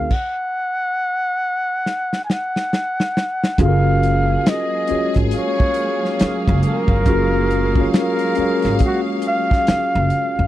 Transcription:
Already playing: C4 D#4 F#4 G#4 A#4 F5
0.11 F#5, kick, crash
1.86 snare
2.13 snare
2.25 G#5
2.30 F#5, snare
2.56 snare
2.73 snare
3.00 snare
3.17 snare
3.44 snare
3.58 F#1 F#3 G#3 A#3 C#4 F4 F#4 G#4 A4 F5, kick, closed hi-hat
3.68 A#4
4.03 closed hi-hat
4.46 D#5, snare, closed hi-hat
4.87 C#4 F4 F#4 G#4, muted upright bass stroke, closed hi-hat
4.92 C#5
5.14 G#1, kick, closed hi-hat
5.31 C#4 G#4 F5, closed hi-hat
5.36 C#5
5.60 kick
5.74 closed hi-hat
6.05 snare
6.19 muted upright bass stroke, snare, closed hi-hat
6.48 F#1, kick
6.63 closed hi-hat
6.67 A#4
6.88 G1, kick
7.06 F#1 C#4 F4 F#4 G#4 F5, kick, closed hi-hat
7.10 A#4
7.51 closed hi-hat
7.75 C#4 F4 F#4 G#4, kick
7.80 C#5
7.94 A#4, snare, closed hi-hat
8.19 closed hi-hat
8.35 C#4 F#4 G#4 F5, muted upright bass stroke, closed hi-hat
8.40 C#5
8.62 G#1, snare, closed hi-hat
8.79 kick, closed hi-hat
8.85 F#4
9.22 closed hi-hat
9.28 F5
9.51 kick, snare
9.67 muted upright bass stroke, snare, closed hi-hat
9.95 F#1
10.10 closed hi-hat
10.39 E2

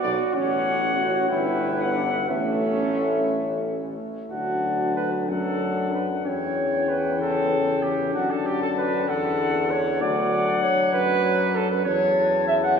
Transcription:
Already playing: F#4 D5
0.02 B1 B3 D5
0.34 A1 C#4 C#5 F#5
0.97 F#4
1.29 G1 B3 E4 B4 G5
1.79 F#5
1.95 D4
2.29 A1 A3 C#4 A4 E5
4.31 D2 F#3 D4 F#4 A5
4.96 B4
5.28 F#2 D4 A4 F#5
5.93 B4
6.25 E2 E3 C#4 C#5 G5
6.89 B4
7.20 C#3 A4
7.83 G4
8.13 F#2 D3 D4 F#4 A5
8.30 A4
8.46 G4
8.62 A4
8.77 B4
9.08 E2 A4 F#5
9.71 C#5
10.01 D2 F#3 D5 F#5
10.63 C#5
10.93 F#2 B4
11.55 A4
11.71 B4
11.85 E2 C#5 A5
12.47 E5
12.63 F#5

